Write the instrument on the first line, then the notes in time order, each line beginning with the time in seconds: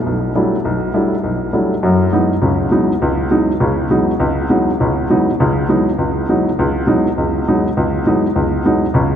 grand piano
0.06 B1
0.35 F#3 G3 A3 D4 E4
0.65 B1
0.94 F#3 G3 A3 D4 E4
1.24 B1
1.53 F#3 G3 A3 D4 E4
1.83 F#2 F#3
2.12 E3 F#3 G#3 B3 D#4
2.42 C#2 C#3
2.71 E3 F#3 G#3 B3 D#4
3.02 C#2
3.31 E3 F#3 G#3 B3 D#4
3.60 C#2 C#3
3.90 E3 F#3 G#3 B3 D#4
4.20 C#2
4.50 E3 F#3 G#3 B3 D#4
4.80 C#2 C#3
5.10 E3 F#3 G#3 B3 D#4
5.40 C#2 C#3
5.69 E3 F#3 G#3 B3 D#4
5.98 C#2
6.29 E3 F#3 G#3 B3 D#4
6.59 C#2
6.87 E3 F#3 G#3 B3 D#4
7.18 C#2
7.48 E3 F#3 G#3 B3 D#4
7.77 C#2
8.06 E3 F#3 G#3 B3 D#4
8.36 C#2
8.65 E3 F#3 G#3 B3 D#4
8.94 C#2 C#3